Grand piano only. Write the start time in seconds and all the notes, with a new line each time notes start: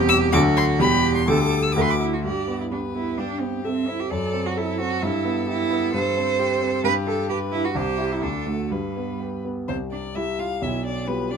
Already playing: E1 E2 G3 C4 C5
0.33 D2 D3 F#3 D4 A4
0.79 E1 E2 G3 G4
1.28 D2 D3 G3 G4 A4
1.76 D2 D3 A3 F#4 A4
2.24 G2
2.48 B3
2.72 G4
2.95 B3
3.18 G2
3.41 C4
3.65 A4
3.88 C4
4.11 F#2
4.33 C4
4.57 A4
4.79 C4
5.03 G2
5.25 B3
5.47 G4
5.70 B3
5.94 G2
6.17 C4
6.39 G4
6.61 C4
6.84 G2
7.06 D4
7.29 G4
7.52 D4
7.75 C2
7.98 E4 G4
8.22 D2
8.46 D4 F#4
8.71 G2
8.97 B3
9.20 G4
9.45 B3
9.68 C2 C3
10.16 G3 E4 G4
10.62 B1 B2
11.08 G3 F4 G4